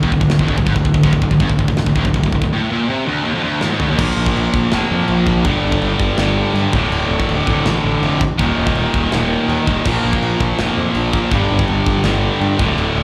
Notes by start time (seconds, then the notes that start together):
0.03 D#1 D#2, kick
0.12 D1 D2, kick
0.20 D1 D2, kick
0.30 D1 D2, snare, china
0.39 F1 F2, kick
0.48 D1 D2, kick
0.58 D1 D2, kick
0.66 G#1 G#2, kick, china
0.76 D1 D2, kick
0.84 D1 D2, kick
0.94 D1 D2, kick
1.03 D1 D2, kick, china
1.13 D1 D2, kick
1.22 D1 D2, kick
1.31 D1 D2, kick
1.40 G1 G2, kick, china
1.49 D1 D2, kick
1.59 D1 D2, kick
1.68 D1 D2, kick
1.77 D1 D2, snare, china
1.86 D1 D2, kick
1.95 D1 D2, kick
2.05 D1 D2, kick
2.14 D1 D2, kick, china
2.23 D1 D2, kick
2.32 D1 D2, kick
2.42 D1 D2, kick
2.53 A2
2.72 A#2
2.90 C3
3.08 D2
3.26 D#2
3.35 F2
3.43 D2
3.61 D#2, snare
3.72 G#2
3.80 D2, floor tom
3.91 D#2
3.98 A#1 A#2 F3 A#3, kick, crash, china
4.17 A#1
4.26 kick
4.36 A#1, china
4.54 A#1, kick
4.72 F1 A#2 F3 A#3, snare, china
4.91 F2
5.08 A#1, china
5.26 A#2 F3 A#3, kick
5.44 G1 G2 D3 G3, kick, china
5.63 G1
5.72 kick
5.81 G1, china
6.00 G1, kick
6.18 G1 G2 D3 G3, snare, china
6.54 G2, china
6.73 D1 D2 A2 D3, kick
6.90 D1, china
7.09 D1
7.20 kick
7.28 D1, china
7.47 D1 D2 A2 D3, kick
7.65 A1, snare, china
7.84 A1
8.01 F1 D2 A2 D3, china
8.21 kick
8.38 D#1 D#2 A#2 D#3, kick, china
8.58 D#1
8.67 kick
8.75 D#1, china
8.94 D#1, kick
9.12 D#1 D#2 A#2 D#3, snare, china
9.48 D#2, china
9.67 D#1 D#2 A#2 D#3, kick
9.85 A#1 A#2 F3 A#3, kick, china, crash
10.04 A#1
10.13 kick
10.22 A#1, china
10.40 A#1, kick
10.58 F1 A#2 F3 A#3, snare, china
10.78 F2
10.95 A#1, china
11.12 A#2 F3 A#3, kick
11.31 G1 G2 D3 G3, kick, china
11.51 G1
11.59 kick
11.68 G1, china
11.86 G1, kick
12.04 G1 G2 D3 G3, snare, china
12.41 G2, china
12.58 D1 D2 A2 D3, kick
12.76 D1, china
12.96 D1